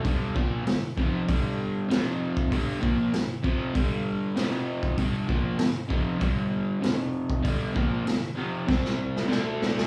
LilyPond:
<<
  \new Staff \with { instrumentName = "Overdriven electric guitar" } { \clef bass \time 4/4 \key g \dorian \tempo 4 = 97 <g, d g>8 <bes, f bes>8 <g, d>8 <f, c f>8 <g, d g>4 <f, c f>4 | <g, d g>8 <bes, f bes>8 <g, d>8 <f, c f>8 <g, d g>4 <f, c f>4 | <g, d g>8 <bes, f bes>8 <g, d>8 <f, c f>8 <g, d g>4 <f, c f>4 | <g, d g>8 <bes, f bes>8 <g, d>8 <f, c f>8 <c g c'>4 <d a d'>4 | }
  \new DrumStaff \with { instrumentName = "Drums" } \drummode { \time 4/4 <hho bd>8 bd8 <hho sn>8 bd8 <hho bd>4 <hho sn>8. bd16 | <hho bd>8 bd8 <hho sn>8 bd8 <hho bd>4 <hho sn>8. bd16 | <hho bd>8 bd8 <hho sn>8 bd8 <hho bd>4 <hho sn>8. bd16 | <hho bd>8 bd8 <hho sn>4 <bd sn>16 sn8 sn16 sn8 sn16 sn16 | }
>>